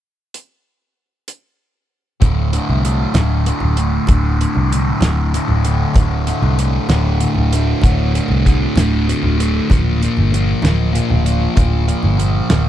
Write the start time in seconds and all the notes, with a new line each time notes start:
0.34 closed hi-hat
1.28 closed hi-hat
2.20 D1 D2 A2 D3, kick, closed hi-hat, high conga, low conga
2.52 D2 A2 D3, closed hi-hat
2.69 C2, low conga
2.84 D2 A2 D3, closed hi-hat, low conga
3.14 D1 D2 A2 D3, snare, closed hi-hat, high conga, low conga
3.30 low conga
3.46 D2 A2 D3, closed hi-hat
3.60 D1, low conga
3.77 D2 A2 D3, closed hi-hat
4.07 D1 D2 A2 D3, kick, closed hi-hat, high conga, low conga
4.39 D2 A2 D3, closed hi-hat, low conga
4.55 C2, low conga
4.72 D2 A2 D3, closed hi-hat
5.01 D1 D2 A2 D3, snare, closed hi-hat, high conga, low conga
5.17 low conga
5.33 D2 A2 D3, closed hi-hat
5.48 D1, low conga
5.65 D2 A2 D3, closed hi-hat
5.94 D1 D2 A2 D3, kick, closed hi-hat, high conga, low conga
6.27 D2 A2 D3, closed hi-hat
6.42 C2, low conga
6.59 D2 A2 D3, closed hi-hat, low conga
6.89 D1 D2 A2 D3, snare, closed hi-hat, high conga, low conga
7.04 low conga
7.20 D2 A2 D3, closed hi-hat
7.34 D1, low conga
7.52 D2 A2 D3, closed hi-hat
7.82 D1 D2 A2 D3, kick, closed hi-hat, high conga, low conga
8.14 D2 A2 D3, closed hi-hat
8.28 C2, low conga
8.46 D2 A2 D3, kick, closed hi-hat
8.76 D1 D2 A2 D3, snare, closed hi-hat, high conga, low conga
8.92 low conga
9.07 D2 A2 D3, closed hi-hat
9.22 D1, low conga
9.38 D2 A2 D3, closed hi-hat
9.55 low conga
9.69 D1 A#2 F3 A#3, kick, closed hi-hat, high conga, low conga
10.02 A#2 F3 A#3, closed hi-hat, low conga
10.17 G1, low conga
10.33 A#2 F3 A#3, closed hi-hat
10.62 D1 A#2 F3 A#3, snare, closed hi-hat, high conga, low conga
10.80 low conga
10.94 A#2 F3 A#3, closed hi-hat
11.10 D1, low conga
11.25 A#2 F3 A#3, closed hi-hat
11.55 D1 A#2 F3 A#3, kick, closed hi-hat, high conga, low conga
11.87 A#2 F3 A#3, closed hi-hat, low conga
12.03 G1, low conga
12.19 A#2 F3 A#3, closed hi-hat, low conga
12.50 D1 A#2 F3 A#3, snare, closed hi-hat, high conga, low conga